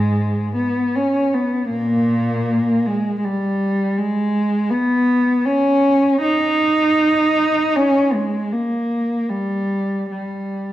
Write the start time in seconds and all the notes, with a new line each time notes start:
Already playing: G#2 G#3
0.55 B3
0.95 C#4
1.34 B3
1.70 A#2 A#3
2.86 G#3
3.18 G#3
3.25 G3
3.97 G#3
4.70 B3
5.46 C#4
6.21 D#4
7.76 C#4
8.14 G#3
8.52 A#3
9.29 G3
10.11 G3